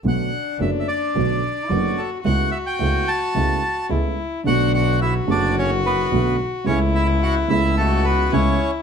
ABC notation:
X:1
M:4/4
L:1/16
Q:1/4=109
K:Bm
V:1 name="Bandoneon"
f4 e3/2 e/2 d8 A2 | f2 e g3 a6 z4 | [Ff]2 [Ff]2 [Ee]2 [Dd]2 [Cc]2 [B,B]4 z2 | [Cc]2 [Ee]2 [Ff]2 [Ee]2 [A,A]2 [B,B]2 [Cc]3 z |]
V:2 name="Cello"
D12 F4 | F12 E4 | D4 F12 | E8 F4 E4 |]
V:3 name="Grand piano"
[B,,,B,,D,A,B,F]2 z2 [F,,,F,,D,A,B,F]2 z2 [B,,,B,,D,A,B,F]2 z2 [F,,,F,,D,A,B,F]2 z2 | [C,,C,A,B,E]2 z2 [C,,C,A,B,E]2 z2 [C,,C,A,B,E]2 z2 [C,,C,A,B,E]2 z2 | [B,,,B,,D,A,B,F]6 [F,,,F,,D,A,B,F]6 [B,,,B,,D,A,B,F]2 z2 | [C,,C,A,B,E]6 [C,,C,A,B,E]6 [C,,C,A,B,E]2 z2 |]
V:4 name="Double bass" clef=bass
B,,,2 z2 F,,,2 z2 B,,,2 z2 F,,,2 z2 | C,,2 z2 C,,2 z2 C,,2 z2 C,,2 z2 | B,,,6 F,,,6 B,,,2 z2 | C,,6 C,,6 C,,2 z2 |]